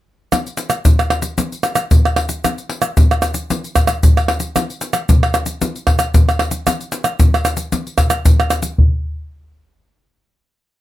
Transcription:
0.32 pandeiro, tamborim, shaker, surdo
0.47 pandeiro, shaker
0.57 pandeiro, shaker
0.70 pandeiro, tamborim, shaker
0.85 pandeiro, shaker, surdo
0.99 pandeiro, tamborim, shaker
1.10 pandeiro, tamborim
1.22 pandeiro, shaker
1.38 pandeiro, shaker, surdo
1.52 pandeiro, shaker
1.63 pandeiro, tamborim, shaker
1.75 pandeiro, tamborim, shaker
1.91 pandeiro, shaker, surdo
2.05 pandeiro, tamborim, shaker
2.16 pandeiro, tamborim
2.29 pandeiro, shaker
2.44 pandeiro, tamborim, shaker, surdo
2.58 pandeiro, shaker
2.69 pandeiro
2.82 pandeiro, tamborim, shaker
2.97 pandeiro, shaker, surdo
3.11 pandeiro, tamborim, shaker
3.22 pandeiro, tamborim, shaker
3.34 pandeiro, shaker
3.50 pandeiro, shaker, surdo
3.64 pandeiro, shaker
3.75 pandeiro, tamborim, shaker, surdo
3.87 pandeiro, tamborim, shaker
4.03 pandeiro, shaker, surdo
4.17 pandeiro, tamborim, shaker
4.28 pandeiro, tamborim
4.40 pandeiro, shaker
4.56 pandeiro, tamborim, shaker, surdo
4.70 pandeiro, shaker
4.81 pandeiro, shaker
4.93 pandeiro, tamborim, shaker
5.09 pandeiro, shaker, surdo
5.23 pandeiro, tamborim, shaker
5.34 pandeiro, tamborim, shaker
5.46 pandeiro, shaker
5.61 pandeiro, shaker, surdo
5.76 pandeiro, shaker
5.87 pandeiro, tamborim, surdo
5.99 pandeiro, tamborim, shaker
6.14 pandeiro, shaker, surdo
6.29 pandeiro, tamborim, shaker
6.39 pandeiro, tamborim
6.51 pandeiro, shaker
6.67 pandeiro, tamborim, shaker, surdo
6.81 pandeiro, shaker
6.92 pandeiro, shaker
7.04 pandeiro, tamborim, shaker
7.20 pandeiro, shaker, surdo
7.34 pandeiro, tamborim, shaker
7.45 pandeiro, tamborim, shaker
7.57 pandeiro, shaker
7.72 pandeiro, shaker, surdo
7.87 pandeiro, shaker
7.98 pandeiro, tamborim, shaker, surdo
8.10 pandeiro, tamborim, shaker
8.25 pandeiro, shaker, surdo
8.40 pandeiro, tamborim, shaker
8.50 pandeiro, tamborim, shaker
8.62 pandeiro, shaker
8.78 surdo

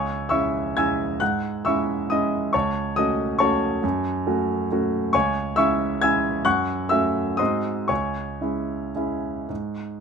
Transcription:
Already playing: C#2 C#5 G#5 C#6
0.29 G#3 C#4 E4 E5 C#6 E6
0.77 G#3 C#4 E4 G#5 E6 G#6
1.20 G#2 F#5 F#6
1.65 G#3 C#4 E4 E5 C#6 E6
2.10 G#3 C#4 E4 D#5 D#6
2.53 C#2 C#5 A5 C#6
2.96 A3 C#4 F#4 D#5 D#6
3.39 A3 C#4 F#4 C#5 A5 C#6
3.84 F#2
4.27 A3 C#4 F#4
4.72 A3 C#4 F#4
5.13 C#2 C#5 G#5 C#6
5.56 G#3 C#4 E4 E5 C#6 E6
6.02 G#3 C#4 E4 G#5 E6 G#6
6.45 F#2 F#5 C#6 F#6
6.89 A3 C#4 F#4 E5 E6
7.37 G#2 G#3 C4 F#4 D#5 C6 D#6
7.88 C#2 C#5 G#5 C#6
8.41 G#3 C#4 E4
8.96 G#3 C#4 E4
9.49 G#2

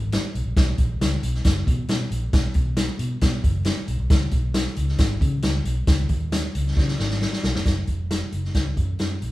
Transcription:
Already playing: G#1
0.12 snare, closed hi-hat
0.35 B1, closed hi-hat
0.46 A#1
0.56 B1, kick, snare, closed hi-hat
0.78 A#1, kick, closed hi-hat
1.01 C#2, snare, closed hi-hat
1.22 B1, closed hi-hat
1.34 snare
1.44 F#1, kick, snare, closed hi-hat
1.67 B2, kick, closed hi-hat
1.88 B2, snare, closed hi-hat
2.11 A#1, closed hi-hat
2.33 B1, kick, snare, closed hi-hat
2.54 B1, kick, closed hi-hat
2.77 snare, closed hi-hat
2.99 B2, closed hi-hat
3.21 B2, kick, snare, closed hi-hat
3.44 F#1, kick, closed hi-hat
3.65 snare, closed hi-hat
3.88 B1, closed hi-hat
4.00 B1
4.10 C#2, kick, snare, closed hi-hat
4.31 B1, kick, closed hi-hat
4.54 snare, closed hi-hat
4.76 C#2, closed hi-hat
4.88 snare
4.98 G#1, kick, snare, closed hi-hat
5.21 C#3, kick, closed hi-hat
5.42 C#2, snare, closed hi-hat
5.65 B1, closed hi-hat
5.87 C#2, kick, snare, closed hi-hat
6.09 D#2, kick, closed hi-hat
6.32 snare, closed hi-hat
6.55 C#2, closed hi-hat
6.67 snare
6.77 C#3, kick, snare
6.88 snare
6.99 G#1, snare
7.10 snare
7.21 snare
7.33 snare
7.43 B1, snare
7.55 F1, snare
7.66 F#1, kick, snare, closed hi-hat
7.87 F1, kick, closed hi-hat
8.11 snare, closed hi-hat
8.32 F#1, closed hi-hat
8.44 snare
8.54 C#2, kick, snare, closed hi-hat
8.77 F#2, kick, closed hi-hat
8.99 F#2, snare, closed hi-hat
9.22 A#1, closed hi-hat

